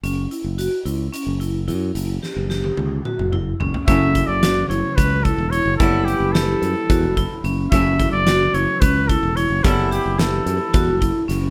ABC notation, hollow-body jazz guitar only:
X:1
M:7/8
L:1/8
Q:1/4=109
K:F#phr
V:1 name="Hollow-body jazz guitar"
z6 z | z6 z | [C,F,A,E]6- [C,F,A,E] | [G,B,CE]6- [G,B,CE] |
[C,F,A,E]6- [C,F,A,E] | [G,B,CE]6- [G,B,CE] |]